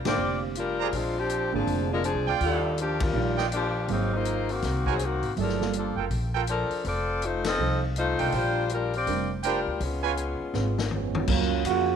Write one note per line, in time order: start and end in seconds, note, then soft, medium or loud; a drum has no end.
0.05 0.17 A1 medium
0.05 0.53 D3 medium
0.05 0.53 A#3 medium
0.05 0.53 C4 medium
0.05 0.40 C4 medium
0.05 0.40 F4 medium
0.05 0.40 G4 medium
0.05 0.54 G4 medium
0.05 0.40 D5 medium
0.05 snare medium
0.05 ride medium
0.18 0.89 F1 medium
0.55 0.92 G3 medium
0.55 0.92 D4 medium
0.55 0.91 F4 medium
0.55 0.91 A#4 medium
0.55 closed hi-hat soft
0.80 0.89 G#4 medium
0.80 0.89 C5 medium
0.80 0.89 D5 medium
0.80 0.89 A#5 medium
0.93 1.49 A#1 medium
0.93 1.17 G#3 medium
0.93 1.17 C4 medium
0.93 1.17 D4 medium
0.93 1.17 F4 medium
0.93 kick soft
0.93 open hi-hat soft
1.18 1.53 F3 medium
1.18 1.53 C4 medium
1.18 1.53 D4 medium
1.18 1.54 G4 loud
1.30 closed hi-hat soft
1.52 1.66 G#1 medium
1.52 2.01 D3 medium
1.52 1.88 F3 medium
1.52 2.01 A#3 medium
1.52 2.01 C4 medium
1.52 1.88 C4 medium
1.52 1.88 D4 medium
1.52 2.01 G#4 medium
1.52 1.88 G#4 medium
1.67 2.13 F1 medium
1.67 kick soft
1.67 open hi-hat soft
1.91 2.04 G#3 medium
1.91 2.04 D4 medium
1.91 2.04 F4 medium
1.91 2.04 A#4 medium
2.04 2.33 F3 medium
2.04 2.33 C4 medium
2.04 2.32 D4 medium
2.04 2.32 G#4 medium
2.04 closed hi-hat soft
2.15 2.27 C2 medium
2.27 2.40 D2 medium
2.27 2.75 F4 medium
2.27 2.75 D5 medium
2.27 2.75 F5 medium
2.27 2.75 G5 loud
2.40 3.11 D#2 medium
2.40 2.77 G3 medium
2.40 2.77 D4 medium
2.40 2.77 F4 medium
2.40 2.77 A4 medium
2.40 kick soft
2.40 open hi-hat soft
2.78 3.02 F3 medium
2.78 3.02 A#3 medium
2.78 3.02 D4 medium
2.78 3.02 G4 medium
2.78 closed hi-hat soft
3.00 3.39 G3 medium
3.00 3.39 D4 medium
3.00 3.39 F4 medium
3.00 3.39 A#4 medium
3.00 kick medium
3.00 ride medium
3.13 3.84 A#1 medium
3.13 3.36 D#3 soft
3.13 3.35 G3 soft
3.13 3.36 D4 soft
3.13 3.36 F4 medium
3.37 3.47 F4 medium
3.37 3.47 D5 medium
3.37 3.47 D#5 medium
3.37 3.47 G5 medium
3.37 snare soft
3.52 3.87 F3 medium
3.52 3.87 A#3 medium
3.52 3.87 D4 medium
3.52 3.87 G4 medium
3.52 closed hi-hat medium
3.88 4.59 G#1 medium
3.88 4.45 F#3 soft
3.88 4.45 A#3 soft
3.88 4.14 A#3 medium
3.88 4.45 C4 soft
3.88 4.13 C4 medium
3.88 4.14 D#4 medium
3.88 4.45 G#4 soft
3.88 kick soft
3.88 open hi-hat soft
3.92 4.14 F#3 medium
4.14 4.51 A#3 medium
4.14 4.50 C4 medium
4.14 4.51 D#4 medium
4.14 4.50 F4 medium
4.25 closed hi-hat soft
4.49 4.88 D#3 medium
4.49 4.88 A#3 medium
4.49 4.87 C4 medium
4.49 4.88 F#4 medium
4.49 open hi-hat soft
4.62 5.19 C2 medium
4.62 kick soft
4.62 snare soft
4.62 open hi-hat soft
4.86 5.01 F#3 medium
4.86 5.01 C4 medium
4.86 5.01 D#4 medium
4.86 4.95 F#4 medium
4.86 5.01 G#4 medium
4.86 4.95 A#4 medium
4.86 4.95 C5 medium
4.86 4.95 G#5 medium
4.86 kick soft
4.99 5.32 A#3 medium
4.99 5.31 C4 medium
4.99 5.32 F#4 medium
4.99 closed hi-hat soft
5.03 5.32 D#3 medium
5.23 5.36 G#1 medium
5.23 open hi-hat soft
5.36 5.93 G1 medium
5.36 5.73 F3 medium
5.36 5.58 F#3 medium
5.36 5.58 A3 soft
5.36 5.73 D4 medium
5.36 5.59 E4 soft
5.36 5.59 G#4 medium
5.36 5.73 A#4 medium
5.36 kick soft
5.36 open hi-hat soft
5.41 5.73 A4 medium
5.49 snare soft
5.60 5.93 G3 medium
5.60 5.93 A#3 soft
5.60 5.93 F4 soft
5.60 5.93 A4 medium
5.60 snare soft
5.73 closed hi-hat soft
5.78 5.98 F3 medium
5.78 5.98 A#3 medium
5.78 5.98 D4 medium
5.78 5.98 A4 medium
5.96 6.10 F#1 medium
5.96 6.06 F4 medium
5.96 6.06 A4 medium
5.96 6.06 A#4 medium
5.96 6.06 G5 medium
6.10 6.67 A#1 medium
6.10 kick soft
6.10 open hi-hat soft
6.34 6.43 F4 medium
6.34 6.43 A4 medium
6.34 6.43 A#4 medium
6.34 6.43 G5 medium
6.47 6.83 F3 medium
6.47 6.83 D4 medium
6.47 6.83 A4 medium
6.47 6.83 A#4 medium
6.47 closed hi-hat soft
6.70 muted upright bass stroke soft
6.70 open hi-hat soft
6.84 7.55 F1 medium
6.84 7.23 C4 medium
6.84 7.23 F4 medium
6.84 7.23 A4 medium
6.84 7.23 D5 loud
6.84 kick soft
6.84 open hi-hat soft
7.22 7.47 A3 medium
7.22 7.46 D#4 medium
7.22 7.46 F4 medium
7.22 7.46 C5 medium
7.22 closed hi-hat soft
7.44 7.81 C4 medium
7.44 7.80 F4 medium
7.44 7.81 A4 medium
7.44 7.80 D#5 medium
7.44 snare medium
7.44 ride medium
7.59 8.15 C2 medium
7.59 7.80 F3 soft
7.59 7.80 C4 soft
7.59 7.80 D#4 soft
7.59 7.81 A4 medium
7.96 8.32 A3 medium
7.96 8.31 D#4 medium
7.96 8.32 F4 medium
7.96 8.32 C5 medium
7.96 closed hi-hat soft
8.18 8.32 C2 medium
8.18 8.67 D4 medium
8.18 8.67 A#4 medium
8.18 8.67 C5 medium
8.18 8.67 G5 medium
8.18 open hi-hat soft
8.32 9.03 A#1 medium
8.32 8.69 G3 medium
8.32 8.68 D4 medium
8.32 8.68 F4 medium
8.32 8.69 C5 medium
8.32 kick soft
8.32 open hi-hat soft
8.69 8.94 G3 medium
8.69 8.95 D4 medium
8.69 8.93 F4 medium
8.69 8.94 A#4 medium
8.69 closed hi-hat soft
8.93 9.28 C4 medium
8.93 9.28 F4 medium
8.93 9.28 G4 medium
8.93 9.29 D5 medium
8.93 open hi-hat soft
9.07 9.63 F1 medium
9.07 9.28 G3 medium
9.07 9.28 C4 soft
9.07 9.28 D4 soft
9.07 9.28 A#4 medium
9.07 kick soft
9.07 open hi-hat soft
9.43 9.79 G3 medium
9.43 9.59 D4 medium
9.43 9.79 D4 medium
9.43 9.79 F4 medium
9.43 9.59 A#4 medium
9.43 9.79 A#4 medium
9.43 9.59 C5 medium
9.43 9.59 G5 medium
9.43 closed hi-hat soft
9.66 9.79 D2 medium
9.80 10.37 C#2 medium
9.80 10.89 G#3 medium
9.80 10.89 B3 medium
9.80 10.89 C#4 medium
9.80 10.89 F4 medium
9.80 kick soft
9.80 open hi-hat soft
10.03 10.13 F4 medium
10.03 10.13 B4 medium
10.03 10.13 C#5 medium
10.03 10.13 G#5 medium
10.17 closed hi-hat soft
10.40 muted upright bass stroke soft
10.54 11.24 G#1 medium
10.54 10.75 G#3 soft
10.54 10.76 C#4 soft
10.54 10.75 F4 soft
10.54 10.76 B4 soft
10.54 snare soft
10.78 snare medium
10.91 11.27 F3 medium
10.91 11.27 G#3 medium
10.91 11.27 B3 medium
10.91 11.27 C#4 medium
10.91 floor tom medium
11.15 floor tom medium
11.28 11.64 C#2 medium
11.28 11.50 F#3 medium
11.28 11.66 F#3 medium
11.28 11.49 A#3 soft
11.28 11.65 A#3 medium
11.28 11.50 C#4 medium
11.28 11.66 C#4 loud
11.28 11.50 F4 soft
11.28 11.65 F4 loud
11.28 11.50 A#4 medium
11.28 kick medium
11.28 crash medium
11.65 11.96 F2 medium
11.65 11.96 C#3 medium
11.65 11.96 A#3 medium
11.65 11.96 F4 medium
11.65 11.96 F#4 loud
11.65 kick soft
11.65 hi-hat pedal medium
11.65 ride medium